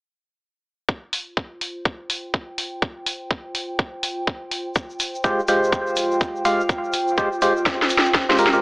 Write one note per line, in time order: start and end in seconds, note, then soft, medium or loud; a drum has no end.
0.88 8.62 F4 medium
0.88 kick loud
1.13 open hi-hat loud
1.18 8.62 C5 medium
1.37 kick loud
1.61 open hi-hat medium
1.81 8.62 G5 medium
1.85 kick loud
2.10 open hi-hat loud
2.34 kick medium
2.58 open hi-hat medium
2.82 kick loud
3.06 open hi-hat loud
3.31 kick loud
3.55 open hi-hat loud
3.79 kick loud
4.03 open hi-hat loud
4.27 kick medium
4.51 open hi-hat medium
4.75 kick loud
4.75 shaker soft
4.90 shaker soft
5.00 open hi-hat loud
5.00 shaker medium
5.15 shaker soft
5.24 5.41 G#3 medium
5.24 5.41 F4 medium
5.24 5.41 G4 medium
5.24 5.41 C5 loud
5.24 kick medium
5.24 shaker soft
5.39 shaker soft
5.48 6.43 G#3 medium
5.48 6.43 F4 medium
5.48 6.43 G4 medium
5.48 6.43 C5 medium
5.48 open hi-hat loud
5.48 shaker loud
5.64 shaker soft
5.72 kick loud
5.72 shaker soft
5.87 shaker soft
5.96 open hi-hat loud
5.96 shaker medium
6.11 shaker soft
6.21 kick loud
6.21 shaker soft
6.36 shaker soft
6.45 6.62 G#3 medium
6.45 6.62 F4 medium
6.45 6.62 G4 medium
6.45 6.62 F5 medium
6.45 open hi-hat loud
6.45 shaker medium
6.60 shaker soft
6.69 kick loud
6.69 shaker soft
6.84 shaker soft
6.93 open hi-hat loud
6.93 shaker medium
7.08 shaker soft
7.18 7.29 G#3 medium
7.18 7.29 F4 medium
7.18 7.29 G4 medium
7.18 7.29 C5 loud
7.18 kick loud
7.18 shaker soft
7.33 shaker soft
7.42 7.53 G#3 medium
7.42 7.53 F4 medium
7.42 7.53 G4 medium
7.42 7.53 C5 medium
7.42 open hi-hat medium
7.42 shaker medium
7.57 shaker soft
7.66 kick loud
7.66 snare medium
7.66 shaker medium
7.82 snare medium
7.82 shaker soft
7.89 open hi-hat loud
7.89 shaker medium
7.98 snare medium
8.05 shaker soft
8.14 kick loud
8.14 snare medium
8.14 shaker soft
8.29 8.37 G#3 medium
8.29 8.37 F4 medium
8.29 8.37 G4 medium
8.29 8.37 C5 medium
8.29 snare medium
8.29 shaker soft
8.38 8.50 G#3 medium
8.38 8.50 F4 medium
8.38 8.50 G4 medium
8.38 8.50 A#4 loud
8.38 open hi-hat loud
8.38 shaker medium
8.47 snare medium
8.53 8.60 G#3 medium
8.53 8.60 F4 medium
8.53 8.60 G4 medium
8.53 8.60 A#4 medium
8.53 shaker soft